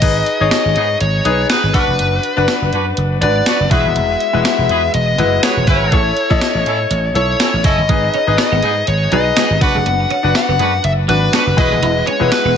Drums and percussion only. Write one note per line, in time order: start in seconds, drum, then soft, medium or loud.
0.02 kick loud
0.02 closed hi-hat medium
0.02 crash medium
0.26 closed hi-hat medium
0.51 snare loud
0.51 closed hi-hat medium
0.51 tambourine medium
0.76 closed hi-hat medium
1.01 closed hi-hat loud
1.25 closed hi-hat medium
1.49 snare loud
1.49 closed hi-hat loud
1.49 tambourine medium
1.74 kick loud
1.74 open hi-hat medium
1.99 closed hi-hat medium
2.23 closed hi-hat medium
2.48 snare loud
2.48 closed hi-hat medium
2.48 tambourine medium
2.73 closed hi-hat medium
2.97 closed hi-hat loud
3.22 closed hi-hat medium
3.46 snare loud
3.46 closed hi-hat loud
3.46 tambourine medium
3.71 kick loud
3.71 open hi-hat medium
3.96 closed hi-hat medium
4.20 closed hi-hat medium
4.45 snare loud
4.45 closed hi-hat loud
4.45 tambourine medium
4.69 closed hi-hat medium
4.94 closed hi-hat loud
5.18 closed hi-hat medium
5.43 snare loud
5.43 closed hi-hat loud
5.43 tambourine medium
5.67 kick loud
5.67 open hi-hat medium
5.92 kick loud
5.92 closed hi-hat medium
6.17 closed hi-hat medium
6.31 kick loud
6.41 snare loud
6.41 closed hi-hat loud
6.41 tambourine medium
6.66 closed hi-hat medium
6.91 closed hi-hat loud
7.15 closed hi-hat medium
7.40 snare loud
7.40 closed hi-hat loud
7.40 tambourine medium
7.64 kick loud
7.64 open hi-hat medium
7.89 kick loud
7.89 closed hi-hat medium
8.14 closed hi-hat medium
8.38 snare loud
8.38 closed hi-hat medium
8.38 tambourine medium
8.63 closed hi-hat medium
8.87 closed hi-hat loud
9.12 closed hi-hat medium
9.36 snare loud
9.36 closed hi-hat medium
9.36 tambourine medium
9.61 kick loud
9.61 open hi-hat medium
9.86 closed hi-hat medium
10.10 closed hi-hat medium
10.35 snare loud
10.35 closed hi-hat loud
10.35 tambourine medium
10.59 closed hi-hat medium
10.84 closed hi-hat loud
11.09 closed hi-hat medium
11.33 snare loud
11.33 closed hi-hat loud
11.33 tambourine medium
11.58 kick loud
11.58 open hi-hat medium
11.83 closed hi-hat medium
12.07 closed hi-hat medium
12.32 snare loud
12.32 closed hi-hat loud
12.32 tambourine medium